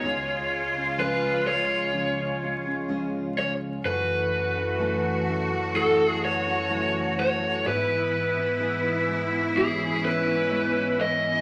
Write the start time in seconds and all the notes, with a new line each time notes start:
Already playing: G#3 C#5
0.03 C#2 C#3 G#3 C#4 F4 G#4
0.74 C#4 F4 G#4
0.98 C#3 F3 G#3 C#4 F4 G#4 B4
1.46 G#3 C#4 F4 G#4 C#5
1.93 F3 G#3 C#4
2.17 C#4 F4 G#4
2.41 G#3 C#4 F4 G#4
2.64 C#4 F4 G#4
2.88 C#3 F3 G#3 C#4 F4 G#4
3.36 G#3 C#4 F4 G#4 C#5
3.83 F#2 C#3 E3 A3 C#4 F#4 A4 B4
4.55 E3 A3 C#4 A4
4.79 F#2 C#3 E3 F#3 A3 C#4 E4 A4
5.26 E3 A3 C#4 A4
5.50 E3 A3 C#4 A4
5.74 F#3 A3 E4 A4
5.97 E3 A3 C#4 A4
6.09 G#4
6.21 E3 A3 C#4 A4 C#5
6.45 E3 A3 C#4 A4
6.69 F#2 C#3 E3 F#3 A3 C#4 E4 A4
7.16 E3 A3 C#4 A4 C#5
7.64 G#2 E3 G#3 B3 E4 G#4 B4
8.36 B3 E4 G#4
8.60 G#3 B3 E4 G#4
9.07 G#3 B3 E4 G#4
9.55 G#3 B3 C#4 E4 G#4
9.79 B3 E4 G#4
10.02 G#3 B3 E4 G#4 B4
10.26 B3 E4 G#4
10.50 G#3 B3 E4 G#4
10.97 G#3 B3 E4 G#4 D#5